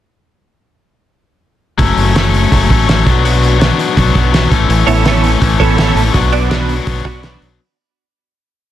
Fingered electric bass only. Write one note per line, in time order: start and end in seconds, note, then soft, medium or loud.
1.79 1.95 F#1 medium
1.97 2.45 F#1 medium
2.52 2.70 F#1 medium
2.70 3.02 A1 medium
3.06 3.70 B1 medium
3.97 4.13 B1 medium
4.15 4.47 B1 medium
4.51 4.67 A1 medium
4.69 4.85 A1 medium
4.87 5.35 A1 medium
5.41 5.58 A1 medium
5.60 5.92 A1 medium
5.95 6.12 A1 medium
6.14 6.78 B1 medium
6.87 7.03 B1 medium
7.05 7.37 B1 medium
7.41 7.57 B1 medium